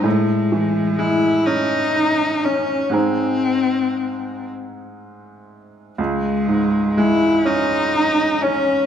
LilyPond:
<<
  \new Staff \with { instrumentName = "Cello" } { \time 6/8 \key cis \minor \tempo 4. = 41 gis4 e'8 dis'4 cis'8 | bis4. r4. | gis4 e'8 dis'4 cis'8 | }
  \new Staff \with { instrumentName = "Grand piano" } { \time 6/8 \key cis \minor a,8 e8 gis8 cis'8 dis'8 cis'8 | <gis, gis bis dis'>2. | cis,8 gis,8 gis8 cis'8 dis'8 cis'8 | }
>>